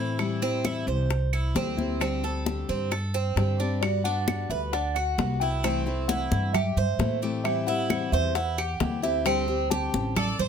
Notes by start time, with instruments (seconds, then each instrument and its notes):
Already playing: upright bass A2, steel-string acoustic guitar A3 C4 E4, cuban tres E4
0.00 steel-string acoustic guitar E3
0.19 steel-string acoustic guitar E3 G3 C4 E4, high bongo, high conga, claves
0.42 steel-string acoustic guitar G3 C4 E4, cuban tres C4, high conga
0.64 steel-string acoustic guitar E3 G3 C4 E4, cuban tres E4, high bongo, high conga, claves
0.87 upright bass C2, cuban tres C5, high conga
1.10 muted steel-string acoustic guitar stroke, high bongo, high conga
1.33 cuban tres E4, high conga, claves
1.55 upright bass D2, steel-string acoustic guitar E3 G3 C4 E4, cuban tres C4, high bongo, low bongo, high conga
1.77 steel-string acoustic guitar G3 C4 E4, high conga
2.00 steel-string acoustic guitar D3 G3 C4 G4, cuban tres C4, high bongo, high conga, claves
2.23 steel-string acoustic guitar G3 C4 G4, cuban tres A4, high bongo, high conga
2.46 steel-string acoustic guitar D3 G3 C4 G4, high bongo, high conga
2.69 upright bass G2, cuban tres C4, high conga
2.91 cuban tres A4, muted steel-string acoustic guitar stroke, high bongo, high conga, claves
3.14 cuban tres C4, high bongo, high conga
3.36 upright bass G2, steel-string acoustic guitar D3 G3 C4 G4, high bongo, low bongo, high conga
3.59 steel-string acoustic guitar G3 C4 G4, cuban tres D4, high bongo
3.81 steel-string acoustic guitar G3 B3 F#4, tine electric piano D5, high bongo, high conga, claves
4.04 steel-string acoustic guitar B3 F#4, cuban tres D4, tine electric piano F#5, high bongo, high conga
4.27 steel-string acoustic guitar G3 B3 F#4, high bongo, high conga, claves
4.50 upright bass D2, cuban tres B4, tine electric piano E5, high bongo, high conga
4.73 cuban tres D4, tine electric piano F#5, muted steel-string acoustic guitar stroke, high bongo, high conga
4.95 cuban tres F#4, tine electric piano F#5, high bongo, high conga, claves
5.18 upright bass C2, steel-string acoustic guitar G3 B3 F#4, high bongo, low bongo, high conga
5.40 steel-string acoustic guitar B3 F#4, cuban tres E4, tine electric piano G5, high conga
5.63 steel-string acoustic guitar C3 E3 A3 C4 E4, cuban tres C4, high bongo, high conga, claves
5.86 steel-string acoustic guitar E3 A3 C4 E4, high bongo, high conga
6.08 steel-string acoustic guitar E3 A3 C4 E4, cuban tres E4, tine electric piano F#5, high bongo, high conga
6.31 upright bass G2, high bongo, high conga
6.53 cuban tres G4, tine electric piano E5, muted steel-string acoustic guitar stroke, high bongo, high conga, low conga, claves
6.76 upright bass G2, cuban tres C5, high conga, low conga
6.99 upright bass A2, steel-string acoustic guitar E3 A3 C4 E4, high bongo, low bongo, high conga
7.22 steel-string acoustic guitar E3 A3 C4 E4, cuban tres G4, high bongo, high conga
7.44 steel-string acoustic guitar E3 G3 C4 E4, tine electric piano E5, high bongo, high conga, claves
7.66 steel-string acoustic guitar G3 C4 E4, cuban tres E4, tine electric piano F#5, high bongo, high conga
7.89 steel-string acoustic guitar E3 G3 C4 E4, high bongo, high conga, claves
8.12 upright bass E2, cuban tres C5, tine electric piano E5, high bongo, high conga
8.35 cuban tres E4, tine electric piano F#5, muted steel-string acoustic guitar stroke, high bongo, high conga
8.58 cuban tres G4, high bongo, high conga, claves
8.80 upright bass D2, steel-string acoustic guitar E3 G3 C4 E4, high bongo, low bongo, high conga
9.02 steel-string acoustic guitar G3 C4 E4, cuban tres G4, tine electric piano E5, high conga
9.25 steel-string acoustic guitar D3 G3 C4 G4, cuban tres C4, tine electric piano G5, high bongo, high conga, claves
9.48 steel-string acoustic guitar G3 C4 G4, high bongo, high conga
9.70 steel-string acoustic guitar D3 G3 C4 G4, cuban tres G4, tine electric piano A5, high bongo, high conga
9.94 upright bass A1, high bongo, high conga
10.16 cuban tres A4, violin section D5, muted steel-string acoustic guitar stroke, high bongo, high conga, low conga, claves
10.39 upright bass A1, cuban tres C5, violin section C5, high conga, low conga